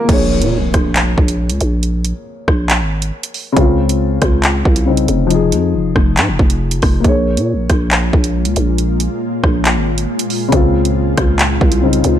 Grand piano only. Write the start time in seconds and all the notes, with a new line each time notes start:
Already playing: F3 D#4 G#4
0.05 A#3 G#4
0.12 C#5
3.53 C#3 C4
3.60 F4
4.86 C#3 C4 D#4
5.27 F3 D#4
5.34 G#4
7.00 A#3 G#4
7.08 C#5
10.48 C#3 C4
10.56 F4
11.82 C#3 C4 D#4